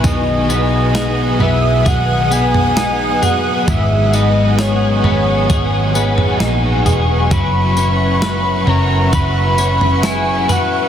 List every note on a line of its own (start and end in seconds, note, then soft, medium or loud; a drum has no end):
0.00 1.36 B1 loud
0.00 0.49 B2 medium
0.00 0.49 B3 medium
0.00 0.13 E4 medium
0.00 0.94 B4 medium
0.00 10.88 B4 medium
0.00 7.27 F#5 medium
0.00 3.64 G#5 medium
0.00 5.45 D#6 medium
0.04 0.50 D#3 medium
0.04 0.50 F#3 medium
0.04 0.49 D#4 medium
0.04 0.47 G#4 medium
0.04 1.44 D#5 loud
0.04 kick loud
0.04 floor tom loud
0.04 tambourine medium
0.48 0.94 B3 medium
0.48 0.96 D#4 medium
0.48 0.94 G#4 medium
0.48 tambourine medium
0.54 0.92 F#3 soft
0.94 1.40 F#3 medium
0.94 1.41 B3 medium
0.94 1.42 D#4 medium
0.94 1.85 G#4 medium
0.94 snare loud
0.94 tambourine medium
0.99 1.38 G#4 medium
1.39 1.83 B1 loud
1.39 1.86 B3 medium
1.39 1.85 G#4 medium
1.39 1.89 E5 loud
1.39 floor tom medium
1.45 1.85 F#3 medium
1.85 3.18 B1 medium
1.85 2.31 B2 medium
1.85 2.32 D#3 medium
1.85 2.32 F#3 medium
1.85 2.31 D#4 medium
1.85 2.29 G#4 medium
1.85 2.34 F#5 loud
1.85 kick loud
1.85 floor tom medium
1.85 tambourine medium
2.30 2.76 B3 soft
2.30 2.77 D#4 medium
2.30 2.76 G#4 medium
2.30 3.25 G#5 loud
2.30 tambourine medium
2.36 2.74 F#3 soft
2.54 floor tom medium
2.76 3.22 F#3 medium
2.76 3.23 B3 medium
2.76 3.22 D#4 medium
2.76 snare loud
2.76 tambourine loud
2.81 3.20 G#4 medium
3.21 3.68 D#4 soft
3.21 3.67 G#4 medium
3.21 3.68 F#5 loud
3.21 floor tom medium
3.21 tambourine medium
3.25 3.68 F#3 soft
3.25 3.69 B3 medium
3.67 5.00 G#1 loud
3.67 4.13 G#2 medium
3.67 4.14 D#3 medium
3.67 4.14 F#3 medium
3.67 4.14 B3 medium
3.67 4.11 G#4 medium
3.67 4.16 E5 loud
3.67 7.27 G#5 medium
3.67 kick loud
3.67 floor tom loud
3.67 tambourine medium
4.12 4.58 B3 medium
4.12 4.59 D#4 medium
4.12 4.58 G#4 medium
4.12 4.61 D#5 loud
4.12 tambourine medium
4.17 4.56 F#3 soft
4.57 5.04 F#3 medium
4.57 5.04 B3 medium
4.57 5.04 D#4 medium
4.57 6.41 C#5 medium
4.57 snare loud
4.57 tambourine medium
4.62 5.02 G#4 medium
5.03 5.47 G#1 loud
5.03 5.50 D#4 medium
5.03 5.49 G#4 medium
5.03 floor tom medium
5.07 5.49 F#3 soft
5.07 5.50 B3 medium
5.48 6.37 G#1 loud
5.48 5.95 G#2 medium
5.48 5.95 D#3 medium
5.48 5.95 F#3 medium
5.48 5.96 B3 medium
5.48 5.95 D#4 medium
5.48 5.93 G#4 loud
5.48 10.88 C#6 medium
5.48 kick loud
5.48 floor tom medium
5.48 tambourine medium
5.94 6.40 B3 medium
5.94 6.41 D#4 medium
5.94 6.40 G#4 medium
5.94 tambourine medium
5.99 6.38 F#3 medium
6.18 floor tom medium
6.39 6.83 A#1 medium
6.39 6.85 F#3 medium
6.39 6.86 B3 medium
6.39 6.85 D#4 medium
6.39 snare loud
6.39 tambourine loud
6.44 6.83 G#4 medium
6.85 7.29 E1 medium
6.85 7.32 B3 medium
6.85 7.32 D#4 medium
6.85 7.31 G#4 medium
6.85 floor tom medium
6.85 tambourine medium
6.90 7.30 F#3 medium
7.31 7.77 F#3 medium
7.31 7.77 C#4 medium
7.31 7.78 E4 medium
7.31 7.75 B4 medium
7.31 10.88 E5 medium
7.31 10.88 F#5 medium
7.31 8.70 B5 loud
7.31 kick loud
7.31 floor tom loud
7.31 tambourine medium
7.76 8.67 C#4 medium
7.76 8.23 E4 soft
7.76 8.22 B4 medium
7.76 tambourine medium
7.81 8.22 C#4 medium
8.21 8.67 F#3 medium
8.21 8.68 C#4 medium
8.21 8.68 E4 medium
8.21 9.13 B4 medium
8.21 snare loud
8.21 tambourine medium
8.26 8.65 B4 medium
8.67 9.11 F#1 loud
8.67 9.58 C#4 medium
8.67 9.13 E4 medium
8.67 9.13 B4 medium
8.67 9.16 A#5 loud
8.67 floor tom medium
8.72 9.12 C#4 medium
9.12 10.45 F#1 medium
9.12 9.58 F#3 medium
9.12 9.59 C#4 medium
9.12 9.59 E4 medium
9.12 9.56 B4 medium
9.12 10.07 B5 loud
9.12 kick loud
9.12 floor tom medium
9.12 tambourine medium
9.57 10.88 C#4 medium
9.57 10.05 E4 soft
9.57 10.04 B4 medium
9.57 tambourine medium
9.63 10.03 C#4 soft
9.81 floor tom medium
10.02 10.49 F#3 medium
10.02 10.50 C#4 medium
10.02 10.50 E4 medium
10.02 10.50 G#5 loud
10.02 snare loud
10.02 tambourine loud
10.08 10.47 B4 medium
10.48 10.88 E4 soft
10.48 10.88 B4 medium
10.48 10.88 F#5 loud
10.48 floor tom medium
10.48 tambourine medium
10.53 10.88 C#4 soft